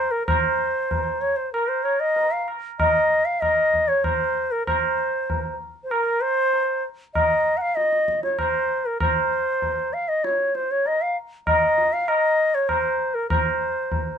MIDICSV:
0, 0, Header, 1, 3, 480
1, 0, Start_track
1, 0, Tempo, 625000
1, 217, Time_signature, 7, 2, 24, 8
1, 5496, Tempo, 614125
1, 10986, End_track
2, 0, Start_track
2, 0, Title_t, "Bansuri"
2, 0, Program_c, 0, 73
2, 0, Note_on_c, 0, 72, 79
2, 86, Note_on_c, 0, 70, 75
2, 97, Note_off_c, 0, 72, 0
2, 202, Note_off_c, 0, 70, 0
2, 207, Note_on_c, 0, 72, 78
2, 931, Note_on_c, 0, 73, 70
2, 943, Note_off_c, 0, 72, 0
2, 1047, Note_on_c, 0, 72, 67
2, 1058, Note_off_c, 0, 73, 0
2, 1169, Note_off_c, 0, 72, 0
2, 1174, Note_on_c, 0, 70, 73
2, 1291, Note_on_c, 0, 72, 69
2, 1303, Note_off_c, 0, 70, 0
2, 1411, Note_on_c, 0, 73, 71
2, 1423, Note_off_c, 0, 72, 0
2, 1535, Note_on_c, 0, 75, 73
2, 1547, Note_off_c, 0, 73, 0
2, 1778, Note_on_c, 0, 77, 74
2, 1789, Note_off_c, 0, 75, 0
2, 1901, Note_off_c, 0, 77, 0
2, 2145, Note_on_c, 0, 75, 88
2, 2498, Note_on_c, 0, 77, 82
2, 2509, Note_off_c, 0, 75, 0
2, 2617, Note_on_c, 0, 75, 83
2, 2628, Note_off_c, 0, 77, 0
2, 2980, Note_on_c, 0, 73, 76
2, 2992, Note_off_c, 0, 75, 0
2, 3103, Note_on_c, 0, 72, 78
2, 3114, Note_off_c, 0, 73, 0
2, 3466, Note_on_c, 0, 70, 76
2, 3478, Note_off_c, 0, 72, 0
2, 3580, Note_off_c, 0, 70, 0
2, 3585, Note_on_c, 0, 72, 69
2, 4271, Note_off_c, 0, 72, 0
2, 4483, Note_on_c, 0, 72, 51
2, 4540, Note_on_c, 0, 70, 80
2, 4552, Note_off_c, 0, 72, 0
2, 4771, Note_on_c, 0, 72, 96
2, 4782, Note_off_c, 0, 70, 0
2, 5252, Note_off_c, 0, 72, 0
2, 5484, Note_on_c, 0, 75, 80
2, 5821, Note_on_c, 0, 78, 65
2, 5832, Note_off_c, 0, 75, 0
2, 5853, Note_on_c, 0, 77, 84
2, 5865, Note_off_c, 0, 78, 0
2, 5964, Note_on_c, 0, 75, 84
2, 5976, Note_off_c, 0, 77, 0
2, 6334, Note_off_c, 0, 75, 0
2, 6338, Note_on_c, 0, 73, 73
2, 6460, Note_on_c, 0, 72, 75
2, 6471, Note_off_c, 0, 73, 0
2, 6825, Note_on_c, 0, 70, 66
2, 6837, Note_off_c, 0, 72, 0
2, 6943, Note_off_c, 0, 70, 0
2, 6948, Note_on_c, 0, 72, 78
2, 7667, Note_on_c, 0, 77, 73
2, 7679, Note_off_c, 0, 72, 0
2, 7785, Note_on_c, 0, 75, 68
2, 7797, Note_off_c, 0, 77, 0
2, 7909, Note_on_c, 0, 73, 69
2, 7920, Note_off_c, 0, 75, 0
2, 8149, Note_on_c, 0, 72, 69
2, 8161, Note_off_c, 0, 73, 0
2, 8276, Note_on_c, 0, 73, 69
2, 8288, Note_off_c, 0, 72, 0
2, 8397, Note_on_c, 0, 75, 73
2, 8409, Note_off_c, 0, 73, 0
2, 8514, Note_on_c, 0, 77, 71
2, 8525, Note_off_c, 0, 75, 0
2, 8630, Note_off_c, 0, 77, 0
2, 8867, Note_on_c, 0, 75, 85
2, 9226, Note_on_c, 0, 77, 77
2, 9238, Note_off_c, 0, 75, 0
2, 9348, Note_on_c, 0, 75, 79
2, 9360, Note_off_c, 0, 77, 0
2, 9708, Note_on_c, 0, 73, 72
2, 9720, Note_off_c, 0, 75, 0
2, 9819, Note_on_c, 0, 72, 77
2, 9830, Note_off_c, 0, 73, 0
2, 10176, Note_on_c, 0, 70, 70
2, 10188, Note_off_c, 0, 72, 0
2, 10297, Note_off_c, 0, 70, 0
2, 10301, Note_on_c, 0, 72, 68
2, 10983, Note_off_c, 0, 72, 0
2, 10986, End_track
3, 0, Start_track
3, 0, Title_t, "Tabla"
3, 215, Note_on_c, 9, 60, 89
3, 215, Note_on_c, 9, 64, 80
3, 291, Note_off_c, 9, 60, 0
3, 291, Note_off_c, 9, 64, 0
3, 699, Note_on_c, 9, 63, 66
3, 699, Note_on_c, 9, 64, 59
3, 776, Note_off_c, 9, 63, 0
3, 776, Note_off_c, 9, 64, 0
3, 1183, Note_on_c, 9, 60, 65
3, 1260, Note_off_c, 9, 60, 0
3, 1422, Note_on_c, 9, 60, 52
3, 1499, Note_off_c, 9, 60, 0
3, 1661, Note_on_c, 9, 63, 66
3, 1738, Note_off_c, 9, 63, 0
3, 1904, Note_on_c, 9, 60, 51
3, 1981, Note_off_c, 9, 60, 0
3, 2147, Note_on_c, 9, 60, 68
3, 2147, Note_on_c, 9, 64, 64
3, 2224, Note_off_c, 9, 60, 0
3, 2224, Note_off_c, 9, 64, 0
3, 2629, Note_on_c, 9, 60, 62
3, 2629, Note_on_c, 9, 64, 56
3, 2706, Note_off_c, 9, 60, 0
3, 2706, Note_off_c, 9, 64, 0
3, 2871, Note_on_c, 9, 64, 52
3, 2948, Note_off_c, 9, 64, 0
3, 3105, Note_on_c, 9, 60, 64
3, 3105, Note_on_c, 9, 64, 58
3, 3182, Note_off_c, 9, 60, 0
3, 3182, Note_off_c, 9, 64, 0
3, 3590, Note_on_c, 9, 60, 86
3, 3590, Note_on_c, 9, 64, 74
3, 3667, Note_off_c, 9, 60, 0
3, 3667, Note_off_c, 9, 64, 0
3, 4068, Note_on_c, 9, 63, 68
3, 4068, Note_on_c, 9, 64, 60
3, 4145, Note_off_c, 9, 63, 0
3, 4145, Note_off_c, 9, 64, 0
3, 4540, Note_on_c, 9, 60, 65
3, 4617, Note_off_c, 9, 60, 0
3, 5018, Note_on_c, 9, 63, 64
3, 5094, Note_off_c, 9, 63, 0
3, 5494, Note_on_c, 9, 60, 65
3, 5494, Note_on_c, 9, 64, 61
3, 5573, Note_off_c, 9, 60, 0
3, 5573, Note_off_c, 9, 64, 0
3, 5976, Note_on_c, 9, 62, 65
3, 6054, Note_off_c, 9, 62, 0
3, 6097, Note_on_c, 9, 62, 53
3, 6175, Note_off_c, 9, 62, 0
3, 6219, Note_on_c, 9, 37, 55
3, 6297, Note_off_c, 9, 37, 0
3, 6337, Note_on_c, 9, 62, 53
3, 6415, Note_off_c, 9, 62, 0
3, 6457, Note_on_c, 9, 60, 70
3, 6457, Note_on_c, 9, 64, 58
3, 6535, Note_off_c, 9, 60, 0
3, 6535, Note_off_c, 9, 64, 0
3, 6941, Note_on_c, 9, 60, 84
3, 6941, Note_on_c, 9, 64, 77
3, 7019, Note_off_c, 9, 60, 0
3, 7019, Note_off_c, 9, 64, 0
3, 7423, Note_on_c, 9, 63, 67
3, 7423, Note_on_c, 9, 64, 58
3, 7501, Note_off_c, 9, 63, 0
3, 7501, Note_off_c, 9, 64, 0
3, 7909, Note_on_c, 9, 62, 67
3, 7987, Note_off_c, 9, 62, 0
3, 8148, Note_on_c, 9, 62, 50
3, 8226, Note_off_c, 9, 62, 0
3, 8388, Note_on_c, 9, 63, 62
3, 8466, Note_off_c, 9, 63, 0
3, 8867, Note_on_c, 9, 60, 70
3, 8867, Note_on_c, 9, 64, 62
3, 8945, Note_off_c, 9, 60, 0
3, 8945, Note_off_c, 9, 64, 0
3, 9109, Note_on_c, 9, 62, 48
3, 9187, Note_off_c, 9, 62, 0
3, 9345, Note_on_c, 9, 60, 64
3, 9423, Note_off_c, 9, 60, 0
3, 9821, Note_on_c, 9, 60, 61
3, 9821, Note_on_c, 9, 64, 55
3, 9899, Note_off_c, 9, 60, 0
3, 9899, Note_off_c, 9, 64, 0
3, 10301, Note_on_c, 9, 60, 85
3, 10301, Note_on_c, 9, 64, 80
3, 10379, Note_off_c, 9, 60, 0
3, 10379, Note_off_c, 9, 64, 0
3, 10779, Note_on_c, 9, 63, 72
3, 10779, Note_on_c, 9, 64, 65
3, 10858, Note_off_c, 9, 63, 0
3, 10858, Note_off_c, 9, 64, 0
3, 10986, End_track
0, 0, End_of_file